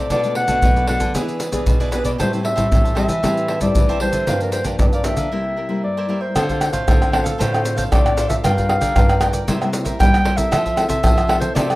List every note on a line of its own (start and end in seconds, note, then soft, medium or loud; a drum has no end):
0.10 0.60 B2 soft
0.10 0.44 B2 medium
0.10 0.18 A3 soft
0.10 0.34 D4 medium
0.10 0.19 D4 medium
0.10 0.19 F#4 medium
0.10 0.35 A4 medium
0.10 0.35 B4 medium
0.10 0.35 D5 medium
0.10 0.35 D5 loud
0.10 pandeiro medium
0.10 maracas medium
0.10 surdo medium
0.24 0.46 A3 medium
0.24 0.46 D4 soft
0.24 0.46 F#4 medium
0.24 pandeiro soft
0.24 maracas soft
0.35 0.46 D4 soft
0.35 0.47 A4 soft
0.35 0.47 B4 soft
0.35 0.47 D5 medium
0.35 0.85 F#5 loud
0.35 pandeiro medium
0.48 0.60 B2 medium
0.48 0.84 A3 medium
0.48 0.58 D4 medium
0.48 0.84 D4 medium
0.48 0.84 F#4 medium
0.48 0.58 A4 medium
0.48 0.58 B4 medium
0.48 0.58 D5 medium
0.48 pandeiro medium
0.48 maracas medium
0.48 surdo soft
0.62 1.12 F#2 medium
0.62 0.96 B2 medium
0.62 pandeiro medium
0.62 maracas medium
0.62 surdo loud
0.76 0.87 A4 soft
0.76 0.87 B4 soft
0.76 0.88 D5 soft
0.76 pandeiro soft
0.76 maracas soft
0.87 1.04 A3 medium
0.87 1.00 D4 medium
0.87 1.04 D4 medium
0.87 1.04 F#4 medium
0.87 1.00 A4 medium
0.87 0.99 B4 medium
0.87 0.98 D5 medium
0.87 1.13 F#5 medium
0.87 pandeiro medium
0.99 1.12 D3 medium
0.99 1.13 A4 soft
0.99 1.13 B4 soft
0.99 1.12 D5 soft
0.99 pandeiro medium
0.99 maracas medium
0.99 surdo soft
1.15 1.65 E3 soft
1.15 1.48 E3 medium
1.15 1.39 B3 soft
1.15 1.40 D4 medium
1.15 1.39 E4 medium
1.15 1.39 G#4 medium
1.15 1.40 G#4 medium
1.15 1.40 B4 medium
1.15 1.40 D5 medium
1.15 pandeiro medium
1.15 maracas medium
1.15 surdo medium
1.29 pandeiro soft
1.29 maracas soft
1.40 1.52 E4 soft
1.40 1.52 G#4 soft
1.40 1.51 B4 soft
1.40 1.51 D5 soft
1.40 pandeiro medium
1.40 maracas medium
1.52 1.64 E3 medium
1.52 1.88 B3 medium
1.52 1.88 D4 medium
1.52 1.88 G#4 medium
1.52 1.79 G#4 soft
1.52 1.78 B4 soft
1.52 1.78 D5 soft
1.52 pandeiro medium
1.52 maracas medium
1.52 surdo soft
1.66 1.89 B2 medium
1.66 2.17 B2 soft
1.66 pandeiro medium
1.66 maracas medium
1.66 surdo medium
1.80 1.89 E4 medium
1.80 1.89 G#4 medium
1.80 1.89 B4 medium
1.80 1.89 D5 medium
1.80 pandeiro soft
1.80 maracas soft
1.91 2.10 B3 soft
1.91 2.10 D4 soft
1.91 2.04 E4 medium
1.91 2.04 G#4 medium
1.91 2.10 G#4 medium
1.91 2.03 B4 medium
1.91 2.05 B4 medium
1.91 2.02 D5 medium
1.91 pandeiro medium
1.91 maracas medium
2.04 2.16 B2 medium
2.04 2.17 G#4 soft
2.04 2.17 B4 soft
2.04 2.17 D5 soft
2.04 2.11 D5 medium
2.04 pandeiro soft
2.04 maracas medium
2.04 surdo soft
2.18 2.52 A2 medium
2.18 2.69 A2 soft
2.18 2.28 G3 soft
2.18 2.29 C4 soft
2.18 2.29 E4 medium
2.18 2.42 G4 medium
2.18 2.43 C5 medium
2.18 2.32 C5 medium
2.18 2.43 E5 medium
2.18 2.44 A5 medium
2.18 pandeiro medium
2.18 maracas medium
2.18 surdo soft
2.33 2.54 G3 medium
2.33 2.55 C4 medium
2.33 2.55 E4 medium
2.33 pandeiro soft
2.33 maracas soft
2.43 2.54 G4 soft
2.43 2.54 C5 soft
2.43 2.55 E5 soft
2.43 2.94 E5 medium
2.43 2.55 A5 soft
2.43 pandeiro medium
2.55 2.68 A2 medium
2.55 2.92 G3 medium
2.55 2.93 C4 medium
2.55 2.93 E4 medium
2.55 2.66 G4 medium
2.55 2.66 C5 medium
2.55 2.66 E5 medium
2.55 2.66 A5 medium
2.55 pandeiro medium
2.55 maracas medium
2.55 surdo soft
2.72 3.05 A2 loud
2.72 3.21 E3 medium
2.72 pandeiro medium
2.72 maracas medium
2.72 surdo loud
2.84 2.95 C5 soft
2.84 2.95 E5 soft
2.84 2.95 A5 soft
2.84 pandeiro soft
2.84 maracas soft
2.95 3.12 G3 medium
2.95 3.12 C4 medium
2.95 3.12 E4 medium
2.95 3.08 G4 medium
2.95 3.08 C5 medium
2.95 3.08 E5 medium
2.95 3.59 E5 loud
2.95 3.07 A5 medium
2.95 pandeiro medium
3.08 3.21 E3 medium
3.08 3.22 C5 soft
3.08 3.21 E5 soft
3.08 3.21 A5 soft
3.08 pandeiro medium
3.08 maracas medium
3.08 surdo soft
3.23 3.73 A2 medium
3.23 3.63 E3 medium
3.23 3.58 G3 medium
3.23 3.58 C4 medium
3.23 3.58 E4 medium
3.23 3.47 G4 medium
3.23 3.48 C5 medium
3.23 3.49 E5 medium
3.23 3.49 A5 medium
3.23 pandeiro medium
3.23 maracas medium
3.23 surdo medium
3.37 pandeiro soft
3.37 maracas soft
3.48 3.61 G4 soft
3.48 3.61 C5 medium
3.48 3.60 E5 medium
3.48 3.59 A5 soft
3.48 pandeiro medium
3.60 3.73 A2 medium
3.60 3.97 G3 medium
3.60 3.97 C4 medium
3.60 3.97 E4 medium
3.60 3.87 C5 soft
3.60 3.98 D5 loud
3.60 3.87 E5 soft
3.60 3.86 A5 soft
3.60 pandeiro medium
3.60 maracas medium
3.60 surdo soft
3.75 4.25 E3 medium
3.75 3.98 E3 medium
3.75 pandeiro medium
3.75 maracas medium
3.75 surdo loud
3.89 3.98 G4 medium
3.89 3.98 C5 medium
3.89 3.98 E5 medium
3.89 3.98 A5 medium
3.89 pandeiro soft
3.89 maracas soft
3.89 surdo soft
4.00 4.25 G3 medium
4.00 4.25 C4 medium
4.00 4.26 E4 medium
4.00 4.13 G4 medium
4.00 4.13 C5 medium
4.00 4.38 C5 medium
4.00 4.12 E5 medium
4.00 4.11 A5 medium
4.00 pandeiro medium
4.12 4.25 D3 medium
4.12 4.26 C5 soft
4.12 4.26 E5 soft
4.12 4.25 A5 soft
4.12 pandeiro soft
4.12 maracas medium
4.12 surdo soft
4.27 4.77 G2 soft
4.27 4.61 G2 medium
4.27 4.36 F3 soft
4.27 4.37 A#3 soft
4.27 4.37 D4 medium
4.27 4.51 G4 medium
4.27 4.52 A#4 medium
4.27 4.52 D5 medium
4.27 4.53 F5 medium
4.27 pandeiro medium
4.27 maracas medium
4.27 surdo medium
4.40 4.62 F3 medium
4.40 4.63 A#3 medium
4.40 4.63 D4 medium
4.40 4.52 A#4 medium
4.40 pandeiro soft
4.40 maracas soft
4.52 4.64 G4 soft
4.52 4.64 A#4 medium
4.52 4.65 C5 medium
4.52 4.64 D5 soft
4.52 4.65 F5 soft
4.52 pandeiro medium
4.52 maracas medium
4.64 4.77 G2 medium
4.64 5.00 F3 medium
4.64 5.01 A#3 medium
4.64 5.01 D4 medium
4.64 4.75 G4 medium
4.64 4.75 A#4 medium
4.64 4.75 D5 medium
4.64 4.75 F5 medium
4.64 pandeiro medium
4.64 maracas medium
4.64 surdo soft
4.79 5.13 G2 medium
4.79 5.29 D3 medium
4.79 4.86 D5 medium
4.79 pandeiro medium
4.79 maracas medium
4.79 surdo medium
4.93 5.03 A#4 soft
4.93 5.04 D5 soft
4.93 5.06 D5 medium
4.93 5.05 F5 soft
4.93 pandeiro soft
4.93 maracas soft
5.04 5.27 F3 medium
5.04 5.27 A#3 medium
5.04 5.28 D4 medium
5.04 5.17 G4 medium
5.04 5.17 A#4 medium
5.04 5.17 D5 medium
5.04 5.83 E5 loud
5.04 5.15 F5 medium
5.04 pandeiro medium
5.04 maracas medium
5.17 5.29 D3 medium
5.17 5.30 A#4 soft
5.17 5.30 D5 soft
5.17 5.30 F5 soft
5.17 pandeiro medium
5.17 maracas medium
5.17 surdo soft
5.32 5.81 C3 medium
5.32 5.56 G3 soft
5.32 5.56 A#3 soft
5.32 5.55 E4 medium
5.32 5.57 E4 medium
5.32 5.56 A#4 medium
5.32 5.56 C5 medium
5.32 5.57 E5 medium
5.56 5.69 E4 soft
5.56 5.69 A#4 soft
5.56 5.68 C5 soft
5.56 5.67 E5 soft
5.69 6.05 G3 medium
5.69 6.05 A#3 medium
5.69 6.05 E4 medium
5.69 5.95 A#4 soft
5.69 5.95 C5 soft
5.69 5.95 E5 soft
5.84 6.33 G2 medium
5.84 6.23 D5 medium
5.97 6.06 E4 medium
5.97 6.06 A#4 medium
5.97 6.06 C5 medium
5.97 6.07 E5 medium
6.08 6.26 G3 medium
6.08 6.26 A#3 medium
6.08 6.21 E4 medium
6.08 6.26 E4 medium
6.08 6.21 A#4 medium
6.08 6.21 C5 medium
6.08 6.19 E5 medium
6.21 6.35 A#4 soft
6.21 6.73 C5 medium
6.21 6.34 C5 soft
6.21 6.34 E5 soft
6.35 6.85 D3 medium
6.35 6.69 D3 loud
6.35 6.45 C4 medium
6.35 6.48 D4 medium
6.35 6.45 F4 medium
6.35 6.48 A4 medium
6.35 6.45 A4 medium
6.35 6.48 C5 medium
6.35 6.48 F5 medium
6.35 pandeiro medium
6.35 tamborim medium
6.35 maracas medium
6.35 surdo medium
6.49 6.84 C4 medium
6.49 6.84 F4 medium
6.49 6.85 A4 medium
6.49 6.60 A4 soft
6.49 6.60 C5 soft
6.49 6.60 F5 soft
6.49 pandeiro soft
6.49 maracas soft
6.49 surdo soft
6.61 muted cavaquinho stroke soft
6.61 pandeiro medium
6.61 tamborim medium
6.61 maracas medium
6.73 6.85 A2 medium
6.73 6.99 A4 medium
6.73 6.99 C5 medium
6.73 7.28 C5 medium
6.73 6.99 F5 medium
6.73 pandeiro medium
6.73 maracas medium
6.73 surdo soft
6.87 7.37 A2 medium
6.87 7.32 D3 loud
6.87 7.10 C4 medium
6.87 7.10 F4 medium
6.87 7.10 A4 medium
6.87 pandeiro medium
6.87 tamborim medium
6.87 maracas medium
6.87 surdo loud
7.01 7.12 A4 soft
7.01 7.12 C5 soft
7.01 7.12 F5 soft
7.01 pandeiro soft
7.01 tamborim medium
7.01 maracas soft
7.12 7.38 C4 soft
7.12 7.25 D4 medium
7.12 7.38 F4 medium
7.12 7.24 A4 medium
7.12 7.39 A4 medium
7.12 7.23 C5 soft
7.12 7.23 F5 medium
7.12 pandeiro medium
7.12 tamborim medium
7.24 7.38 A4 medium
7.24 7.42 A4 medium
7.24 7.38 C5 medium
7.24 7.37 F5 medium
7.24 pandeiro medium
7.24 maracas medium
7.38 7.84 A2 loud
7.38 7.90 D3 medium
7.38 7.51 D4 medium
7.38 7.51 A4 medium
7.38 7.52 C5 medium
7.38 7.78 C5 medium
7.38 7.51 F5 medium
7.38 pandeiro medium
7.38 maracas medium
7.38 surdo medium
7.52 7.89 C4 medium
7.52 7.89 F4 medium
7.52 7.64 A4 soft
7.52 7.89 A4 medium
7.52 7.64 C5 soft
7.52 7.64 F5 soft
7.52 pandeiro soft
7.52 tamborim medium
7.52 maracas soft
7.64 muted cavaquinho stroke soft
7.64 pandeiro medium
7.64 maracas medium
7.76 7.90 A4 medium
7.76 7.90 C5 medium
7.76 7.84 C5 medium
7.76 7.90 F5 medium
7.76 pandeiro medium
7.76 maracas medium
7.76 surdo soft
7.91 8.36 A2 medium
7.91 8.41 A2 medium
7.91 8.27 C4 medium
7.91 8.15 D4 soft
7.91 8.27 F4 medium
7.91 8.16 A4 soft
7.91 8.27 A4 medium
7.91 8.17 C5 medium
7.91 8.28 D5 loud
7.91 8.17 F5 medium
7.91 pandeiro medium
7.91 tamborim medium
7.91 maracas medium
7.91 surdo loud
8.06 pandeiro soft
8.06 tamborim medium
8.06 maracas soft
8.17 8.29 D4 medium
8.17 8.29 A4 medium
8.17 8.28 C5 medium
8.17 8.27 F5 medium
8.17 pandeiro medium
8.17 maracas medium
8.28 8.52 D4 medium
8.28 8.52 F4 medium
8.28 8.43 A4 soft
8.28 8.53 A#4 medium
8.28 8.42 C5 soft
8.28 8.36 E5 medium
8.28 8.42 F5 soft
8.28 pandeiro medium
8.28 maracas medium
8.28 surdo soft
8.44 8.77 G2 loud
8.44 8.93 G3 medium
8.44 8.56 F4 medium
8.44 8.56 A#4 medium
8.44 8.56 D5 medium
8.44 9.44 F5 loud
8.44 8.56 G5 medium
8.44 pandeiro medium
8.44 tamborim medium
8.44 maracas medium
8.44 surdo medium
8.57 8.92 D4 medium
8.57 8.93 F4 medium
8.57 8.68 A#4 soft
8.57 8.93 A#4 medium
8.57 8.68 D5 soft
8.57 8.68 G5 soft
8.57 pandeiro soft
8.57 maracas soft
8.57 surdo soft
8.69 muted cavaquinho stroke soft
8.69 pandeiro medium
8.69 tamborim medium
8.81 8.93 D3 medium
8.81 9.08 A#4 soft
8.81 9.07 D5 medium
8.81 9.07 G5 medium
8.81 pandeiro medium
8.81 maracas medium
8.81 surdo soft
8.96 9.40 G2 loud
8.96 9.45 D3 medium
8.96 9.18 D4 medium
8.96 9.18 F4 medium
8.96 9.18 A#4 medium
8.96 pandeiro medium
8.96 tamborim medium
8.96 maracas medium
8.96 surdo loud
9.09 9.20 A#4 soft
9.09 9.21 D5 soft
9.09 9.21 G5 medium
9.09 pandeiro soft
9.09 tamborim medium
9.09 maracas soft
9.21 9.45 D4 medium
9.21 9.33 F4 soft
9.21 9.46 F4 medium
9.21 9.34 A#4 medium
9.21 9.46 A#4 medium
9.21 9.33 D5 soft
9.21 9.32 G5 medium
9.21 pandeiro medium
9.21 tamborim medium
9.21 maracas medium
9.33 9.47 A#4 soft
9.33 9.47 D5 medium
9.33 9.46 G5 medium
9.33 pandeiro medium
9.33 maracas medium
9.47 9.92 C3 loud
9.47 9.97 C3 medium
9.47 9.56 G3 medium
9.47 9.56 A#3 medium
9.47 9.60 E4 medium
9.47 9.56 E4 medium
9.47 9.60 A#4 medium
9.47 9.60 C5 medium
9.47 9.60 E5 medium
9.47 pandeiro medium
9.47 maracas medium
9.47 surdo medium
9.61 9.96 G3 medium
9.61 9.97 A#3 medium
9.61 9.97 E4 medium
9.61 9.72 A#4 soft
9.61 9.72 C5 soft
9.61 9.72 E5 soft
9.61 pandeiro soft
9.61 tamborim medium
9.61 maracas soft
9.73 muted cavaquinho stroke soft
9.73 pandeiro medium
9.73 maracas medium
9.85 9.98 A#4 medium
9.85 9.98 C5 medium
9.85 9.98 E5 medium
9.85 pandeiro medium
9.85 maracas medium
9.85 surdo soft
9.99 10.50 G2 medium
9.99 10.44 G3 medium
9.99 10.35 G3 medium
9.99 10.35 A#3 medium
9.99 10.23 E4 medium
9.99 10.35 E4 medium
9.99 10.24 A#4 medium
9.99 10.24 C5 soft
9.99 10.24 E5 medium
9.99 10.39 G5 loud
9.99 pandeiro medium
9.99 tamborim medium
9.99 maracas medium
9.99 surdo medium
10.14 pandeiro soft
10.14 tamborim medium
10.14 maracas soft
10.24 10.37 E4 medium
10.24 10.37 A#4 medium
10.24 10.36 C5 medium
10.24 10.35 E5 medium
10.24 pandeiro medium
10.36 10.60 C4 medium
10.36 10.60 E4 medium
10.36 10.61 A4 medium
10.36 10.50 A#4 soft
10.36 10.50 C5 soft
10.36 10.50 E5 medium
10.36 10.89 E5 medium
10.36 pandeiro medium
10.36 maracas medium
10.36 surdo soft
10.51 10.85 F3 loud
10.51 11.01 F3 medium
10.51 10.63 F4 medium
10.51 10.64 A4 medium
10.51 10.64 C5 medium
10.51 10.64 E5 medium
10.51 pandeiro medium
10.51 tamborim medium
10.51 maracas medium
10.51 surdo medium
10.65 10.76 A4 soft
10.65 10.76 C5 soft
10.65 10.76 E5 soft
10.65 pandeiro soft
10.65 maracas soft
10.65 surdo soft
10.76 11.26 C4 medium
10.76 11.26 E4 medium
10.76 11.26 A4 medium
10.76 muted cavaquinho stroke soft
10.76 pandeiro medium
10.76 tamborim medium
10.76 maracas medium
10.88 11.01 C3 medium
10.88 11.15 A4 soft
10.88 11.15 C5 medium
10.88 11.15 E5 medium
10.88 11.39 E5 loud
10.88 pandeiro medium
10.88 maracas medium
10.88 surdo soft
11.03 11.54 C3 medium
11.03 11.48 F3 loud
11.03 pandeiro medium
11.03 tamborim medium
11.03 maracas medium
11.03 surdo loud
11.17 11.27 A4 soft
11.17 11.28 C5 soft
11.17 11.28 E5 soft
11.17 pandeiro soft
11.17 tamborim medium
11.17 maracas soft
11.28 11.65 C4 medium
11.28 11.65 E4 medium
11.28 11.41 F4 medium
11.28 11.40 A4 medium
11.28 11.65 A4 medium
11.28 11.40 C5 medium
11.28 11.39 E5 medium
11.28 pandeiro medium
11.28 tamborim medium
11.40 11.54 A4 medium
11.40 11.54 C5 medium
11.40 11.54 C5 soft
11.40 11.54 E5 medium
11.40 pandeiro medium
11.40 maracas medium
11.55 11.75 C3 loud
11.55 11.75 F3 medium
11.55 11.67 F4 medium
11.55 11.68 A4 medium
11.55 11.68 C5 medium
11.55 11.75 D5 medium
11.55 11.67 E5 medium
11.55 pandeiro medium
11.55 maracas medium
11.55 surdo medium
11.69 11.75 C4 medium
11.69 11.75 E4 medium
11.69 11.75 A4 soft
11.69 11.75 A4 medium
11.69 11.75 C5 soft
11.69 11.75 E5 soft
11.69 pandeiro soft
11.69 tamborim medium
11.69 maracas soft